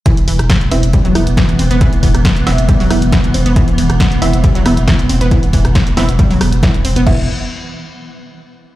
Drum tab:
CC |----------------|----------------|----------------|----------------|
HH |xxoxxxoxxxoxxxox|xxoxxxoxxooxxxox|xxoxxxoxxxoxxxox|xxoxxxoxxooxxxox|
SD |---ro-----r-o---|---ro-o---r-o---|---ro-----r-o---|---ro-o---r-o---|
BD |o---o---o---o---|o-o-o---o---o---|o---o---o---o---|o-o-o---o---o---|

CC |x---------------|
HH |----------------|
SD |----------------|
BD |o---------------|